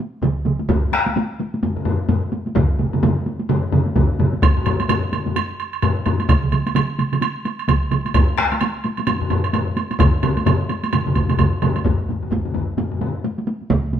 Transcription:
0.23 taiko, taiko mid, taiko high
0.46 taiko mid, taiko high
0.60 taiko high
0.69 taiko, taiko low-mid, taiko high
0.92 taiko rim, taiko high
1.06 taiko high
1.16 taiko high
1.40 taiko high
1.54 taiko high
1.63 taiko low-mid, taiko high
1.77 taiko low-mid
1.85 taiko low-mid, taiko high
2.09 taiko low-mid, taiko high
2.32 taiko high
2.46 taiko high
2.55 taiko, taiko low-mid, taiko mid, taiko high
2.79 taiko low-mid, taiko mid, taiko high
2.93 taiko low-mid, taiko mid, taiko high
3.03 taiko low-mid, taiko mid, taiko high
3.26 taiko high
3.40 taiko high
3.49 taiko low-mid, taiko mid, taiko high
3.72 taiko low-mid, taiko mid, taiko high
3.86 taiko high
3.96 taiko, taiko low-mid, taiko mid, taiko high
4.19 taiko low-mid, taiko mid, taiko high
4.33 taiko high
4.42 taiko, taiko low-mid, taiko high, high woodblock
4.57 taiko low-mid
4.66 taiko low-mid, taiko high, high woodblock
4.80 taiko high, high woodblock
4.89 taiko low-mid, taiko high, high woodblock
5.12 taiko low-mid, taiko high, high woodblock
5.26 taiko low-mid, taiko high
5.36 taiko high, high woodblock
5.60 high woodblock
5.73 high woodblock
5.82 taiko low-mid, taiko high, high woodblock
6.06 taiko low-mid, taiko high, high woodblock
6.20 taiko high, high woodblock
6.29 taiko, taiko mid, taiko high, high woodblock
6.42 taiko mid
6.52 taiko mid, taiko high, high woodblock
6.66 taiko high, high woodblock
6.75 taiko mid, taiko high, high woodblock
6.98 taiko mid, taiko high, high woodblock
7.12 taiko mid, taiko high, high woodblock
7.21 taiko high, high woodblock
7.45 taiko high, high woodblock
7.59 high woodblock
7.68 taiko, taiko mid, taiko high, high woodblock
7.91 taiko mid, taiko high, high woodblock
8.05 taiko high, high woodblock
8.14 taiko, taiko low-mid, taiko high, high woodblock
8.38 taiko rim, taiko high, high woodblock
8.52 taiko high, high woodblock
8.61 taiko high, high woodblock
8.84 taiko high, high woodblock
8.97 taiko high, high woodblock
9.07 taiko low-mid, taiko high, high woodblock
9.21 taiko low-mid
9.30 taiko low-mid, taiko high, high woodblock
9.44 high woodblock
9.53 taiko low-mid, taiko high, high woodblock
9.77 taiko high, high woodblock
9.91 taiko high, high woodblock
10.00 taiko, taiko low-mid, taiko mid, taiko high, high woodblock
10.23 taiko low-mid, taiko mid, taiko high, high woodblock
10.37 taiko high, high woodblock
10.46 taiko low-mid, taiko mid, taiko high, high woodblock
10.69 taiko high, high woodblock
10.83 taiko high, high woodblock
10.93 taiko low-mid, taiko mid, taiko high, high woodblock
11.06 taiko low-mid, taiko mid
11.15 taiko, taiko low-mid, taiko mid, taiko high, high woodblock
11.29 taiko low-mid, taiko mid, taiko high, high woodblock
11.38 taiko, taiko low-mid, taiko mid, taiko high, high woodblock
11.62 taiko low-mid, taiko mid, taiko high, high woodblock
11.76 taiko high, high woodblock
11.85 taiko, taiko low-mid, taiko high
12.00 taiko high
12.09 taiko low-mid, taiko high
12.23 taiko low-mid, taiko high
12.31 taiko, taiko low-mid, taiko high
12.45 taiko low-mid, taiko high
12.54 taiko low-mid, taiko high
12.68 taiko high
12.78 taiko low-mid, taiko high
12.92 taiko low-mid, taiko high
13.01 taiko low-mid, taiko high
13.24 taiko high
13.38 taiko high
13.47 taiko high
13.61 taiko high
13.70 taiko, taiko mid, taiko high
13.85 taiko high
13.93 taiko mid, taiko high

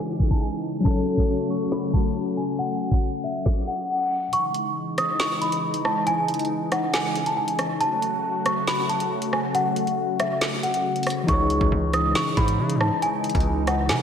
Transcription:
Already playing: C#3 E3 G#3 D#4 G#4 C#5 G#5
0.20 kick, closed hi-hat
0.31 A5, kick, closed hi-hat
0.41 G#5
0.52 closed hi-hat
0.63 closed hi-hat
0.80 F#3 C#4
0.85 C#3 F#3 A3 F#4 A4 A5, kick, closed hi-hat
0.90 C#5
1.07 closed hi-hat
1.17 kick
1.50 C#6, closed hi-hat
1.72 B5, snare, closed hi-hat
1.93 A5, kick, closed hi-hat
2.04 closed hi-hat
2.26 closed hi-hat
2.37 G#5
2.59 F#5, closed hi-hat
2.81 closed hi-hat
2.91 kick, closed hi-hat
3.24 E5, closed hi-hat
3.46 kick, snare
3.67 F#5
4.33 C#3 E3 G#3 D#4 C#6, closed hi-hat
4.54 closed hi-hat
4.98 D#6, cross-stick, closed hi-hat
5.20 C#6, snare, closed hi-hat
5.41 B5, closed hi-hat
5.52 closed hi-hat
5.74 closed hi-hat
5.85 A5, cross-stick
6.07 G#5, closed hi-hat
6.28 closed hi-hat
6.34 closed hi-hat
6.39 closed hi-hat
6.45 closed hi-hat
6.72 F#5, cross-stick, closed hi-hat
6.94 G#5, snare, closed hi-hat
7.16 closed hi-hat
7.26 A5, closed hi-hat
7.37 G#5
7.48 closed hi-hat
7.59 cross-stick, closed hi-hat
7.81 F#3 A3 F#4 A5, closed hi-hat
8.02 closed hi-hat
8.46 C#6, cross-stick, closed hi-hat
8.67 B5, snare, closed hi-hat
8.89 A5, closed hi-hat
9.00 closed hi-hat
9.22 closed hi-hat
9.33 G#5, cross-stick
9.55 F#5, closed hi-hat
9.76 closed hi-hat
9.87 closed hi-hat
10.20 E5, cross-stick, closed hi-hat
10.41 snare, closed hi-hat
10.63 F#5, closed hi-hat
10.74 closed hi-hat
10.96 closed hi-hat
11.03 cross-stick, closed hi-hat, open hi-hat
11.10 closed hi-hat
11.24 E3 D#4
11.28 C#2 E3 G#3 D#4 G#4 C#6, kick, closed hi-hat
11.33 C#5
11.50 closed hi-hat
11.61 C#2, kick
11.72 C#2
11.93 D#6, cross-stick, closed hi-hat
12.15 C#6, snare, closed hi-hat
12.37 G#2 B5, kick, closed hi-hat
12.48 closed hi-hat
12.59 C#3
12.70 closed hi-hat
12.75 G#2
12.80 A5, cross-stick
13.02 G#5, closed hi-hat
13.24 closed hi-hat
13.29 closed hi-hat
13.35 C#2, kick, closed hi-hat
13.40 closed hi-hat
13.67 F#5, cross-stick, closed hi-hat
13.89 C#3 G#5, snare, closed hi-hat

